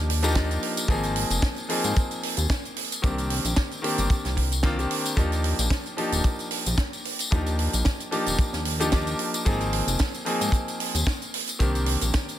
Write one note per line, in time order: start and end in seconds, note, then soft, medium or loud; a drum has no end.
0.00 0.58 D#2 medium
0.00 0.20 F3 medium
0.00 0.20 A#3 medium
0.00 0.20 D4 medium
0.00 0.20 D#4 medium
0.00 0.21 G4 medium
0.10 open hi-hat loud
0.22 0.32 F3 medium
0.22 0.32 A#3 medium
0.22 0.32 D4 medium
0.22 0.32 D#4 medium
0.22 0.33 G4 loud
0.22 closed hi-hat medium
0.22 tambourine medium
0.35 0.86 F3 medium
0.35 0.86 A#3 medium
0.35 0.86 D4 medium
0.35 0.86 D#4 medium
0.35 0.86 G4 loud
0.35 kick loud
0.35 snare loud
0.35 closed hi-hat medium
0.51 closed hi-hat soft
0.51 tambourine soft
0.63 open hi-hat loud
0.77 closed hi-hat medium
0.77 tambourine medium
0.88 1.25 G#1 loud
0.88 1.66 F3 medium
0.88 1.66 A#3 medium
0.88 1.66 C4 medium
0.88 1.67 D#4 medium
0.88 1.67 G#4 loud
0.88 kick loud
0.88 closed hi-hat medium
0.88 tambourine medium
1.03 closed hi-hat soft
1.03 tambourine soft
1.16 open hi-hat loud
1.30 1.40 F1 medium
1.30 closed hi-hat medium
1.30 tambourine medium
1.42 kick loud
1.42 snare loud
1.42 closed hi-hat medium
1.56 closed hi-hat soft
1.56 tambourine soft
1.69 3.00 F3 medium
1.69 3.00 A#3 medium
1.69 3.00 C4 medium
1.69 3.01 D#4 medium
1.69 3.01 G#4 medium
1.69 open hi-hat loud
1.84 1.93 G#2 medium
1.84 closed hi-hat medium
1.84 tambourine medium
1.96 kick loud
1.96 closed hi-hat medium
1.96 tambourine medium
2.11 closed hi-hat soft
2.11 tambourine soft
2.23 open hi-hat loud
2.37 2.47 D#2 medium
2.37 closed hi-hat medium
2.37 tambourine medium
2.50 kick loud
2.50 snare loud
2.50 closed hi-hat medium
2.65 closed hi-hat soft
2.65 tambourine soft
2.76 open hi-hat loud
2.92 closed hi-hat medium
2.92 tambourine medium
3.02 3.40 C2 loud
3.02 3.80 D#3 medium
3.02 3.80 A#3 medium
3.02 3.81 C4 medium
3.02 3.81 D4 medium
3.02 3.81 G4 medium
3.02 kick loud
3.02 closed hi-hat medium
3.02 tambourine soft
3.18 closed hi-hat soft
3.18 tambourine soft
3.30 open hi-hat loud
3.45 3.54 A#1 medium
3.45 closed hi-hat medium
3.45 tambourine medium
3.56 kick loud
3.56 snare loud
3.56 closed hi-hat medium
3.71 closed hi-hat soft
3.71 tambourine soft
3.82 4.48 D#3 medium
3.82 4.48 A#3 medium
3.82 4.49 C4 medium
3.82 4.49 D4 medium
3.82 4.49 G4 medium
3.82 open hi-hat loud
3.98 4.08 G1 medium
3.98 closed hi-hat medium
3.98 tambourine medium
4.10 kick loud
4.10 closed hi-hat medium
4.10 tambourine soft
4.25 4.86 C2 medium
4.25 snare soft
4.25 closed hi-hat soft
4.25 tambourine soft
4.37 kick medium
4.37 open hi-hat loud
4.52 closed hi-hat medium
4.52 tambourine medium
4.63 4.75 D#3 loud
4.63 4.75 A#3 medium
4.63 4.75 C4 medium
4.63 4.75 D4 medium
4.63 4.75 F4 loud
4.63 kick loud
4.63 snare loud
4.63 closed hi-hat medium
4.78 5.14 D#3 medium
4.78 5.14 A#3 medium
4.78 5.14 C4 medium
4.78 5.14 D4 medium
4.78 5.15 G4 medium
4.78 closed hi-hat soft
4.78 tambourine soft
4.91 open hi-hat loud
5.05 closed hi-hat medium
5.05 tambourine medium
5.16 5.54 D#2 loud
5.16 5.94 F3 medium
5.16 5.94 A#3 medium
5.16 5.95 D4 medium
5.16 5.95 D#4 medium
5.16 5.95 G4 loud
5.16 kick loud
5.16 closed hi-hat medium
5.32 closed hi-hat soft
5.32 tambourine soft
5.44 open hi-hat loud
5.59 5.68 A#1 medium
5.59 closed hi-hat medium
5.59 tambourine medium
5.70 kick loud
5.70 snare loud
5.70 closed hi-hat medium
5.86 closed hi-hat soft
5.86 tambourine soft
5.97 7.28 F3 medium
5.97 7.28 A#3 medium
5.97 7.29 D4 medium
5.97 7.29 D#4 medium
5.97 7.29 G4 medium
5.97 open hi-hat loud
6.12 6.22 D#1 medium
6.12 closed hi-hat medium
6.12 tambourine medium
6.24 kick loud
6.24 closed hi-hat medium
6.24 tambourine medium
6.39 closed hi-hat soft
6.39 tambourine soft
6.51 open hi-hat loud
6.66 6.76 A#1 medium
6.66 closed hi-hat medium
6.66 tambourine medium
6.78 kick loud
6.78 snare loud
6.78 closed hi-hat medium
6.78 tambourine medium
6.93 closed hi-hat soft
6.93 tambourine soft
7.05 open hi-hat loud
7.19 closed hi-hat medium
7.19 tambourine medium
7.31 7.68 D#2 loud
7.31 8.09 F3 medium
7.31 8.09 A#3 medium
7.31 8.09 D4 medium
7.31 8.09 D#4 medium
7.31 8.10 G4 medium
7.31 kick loud
7.31 closed hi-hat medium
7.46 closed hi-hat soft
7.46 tambourine soft
7.59 open hi-hat loud
7.73 7.83 A#1 medium
7.73 closed hi-hat medium
7.73 tambourine medium
7.85 kick loud
7.85 snare loud
7.85 closed hi-hat medium
7.85 tambourine medium
8.00 closed hi-hat soft
8.00 tambourine soft
8.11 8.77 F3 medium
8.11 8.77 A#3 medium
8.11 8.77 D4 medium
8.11 8.77 D#4 medium
8.11 8.78 G4 medium
8.11 open hi-hat loud
8.26 8.36 D#1 medium
8.26 closed hi-hat medium
8.26 tambourine medium
8.39 kick loud
8.39 closed hi-hat medium
8.53 9.15 D#2 medium
8.53 snare soft
8.53 closed hi-hat soft
8.53 tambourine soft
8.65 open hi-hat loud
8.80 8.89 F3 medium
8.80 8.89 A#3 medium
8.80 8.89 D4 medium
8.80 8.90 D#4 medium
8.80 8.90 G4 loud
8.80 closed hi-hat medium
8.80 tambourine medium
8.92 9.43 F3 medium
8.92 9.43 A#3 medium
8.92 9.43 D4 medium
8.92 9.43 D#4 medium
8.92 9.43 G4 loud
8.92 kick loud
8.92 snare loud
8.92 closed hi-hat medium
8.92 tambourine medium
9.07 closed hi-hat soft
9.07 tambourine soft
9.19 open hi-hat loud
9.34 closed hi-hat medium
9.34 tambourine medium
9.45 9.82 G#1 loud
9.45 10.23 F3 medium
9.45 10.23 A#3 medium
9.45 10.23 C4 medium
9.45 10.24 D#4 medium
9.45 10.24 G#4 loud
9.45 kick loud
9.45 closed hi-hat medium
9.45 tambourine medium
9.60 closed hi-hat soft
9.60 tambourine soft
9.73 open hi-hat loud
9.87 9.97 F1 medium
9.87 closed hi-hat medium
9.87 tambourine medium
9.99 kick loud
9.99 snare loud
9.99 closed hi-hat medium
9.99 tambourine medium
10.14 closed hi-hat soft
10.14 tambourine soft
10.25 11.57 F3 medium
10.25 11.57 A#3 medium
10.25 11.57 C4 medium
10.25 11.57 D#4 medium
10.25 11.58 G#4 medium
10.25 open hi-hat loud
10.41 10.50 G#2 medium
10.41 closed hi-hat medium
10.41 tambourine medium
10.52 kick loud
10.52 closed hi-hat medium
10.52 tambourine medium
10.68 closed hi-hat soft
10.68 tambourine soft
10.80 open hi-hat loud
10.94 11.04 D#2 medium
10.94 closed hi-hat medium
10.94 tambourine medium
11.07 kick loud
11.07 snare loud
11.07 closed hi-hat medium
11.07 tambourine medium
11.22 closed hi-hat soft
11.22 tambourine soft
11.34 open hi-hat loud
11.47 closed hi-hat medium
11.47 tambourine medium
11.59 11.97 C2 loud
11.59 12.37 D#3 medium
11.59 12.37 A#3 medium
11.59 12.38 C4 medium
11.59 12.38 D4 medium
11.59 12.38 G4 medium
11.59 kick loud
11.59 closed hi-hat medium
11.59 tambourine medium
11.75 closed hi-hat soft
11.75 tambourine soft
11.86 open hi-hat loud
12.01 12.11 A#1 medium
12.01 closed hi-hat medium
12.01 tambourine medium
12.13 kick loud
12.13 snare loud
12.13 closed hi-hat medium
12.13 tambourine medium
12.29 closed hi-hat soft
12.29 tambourine soft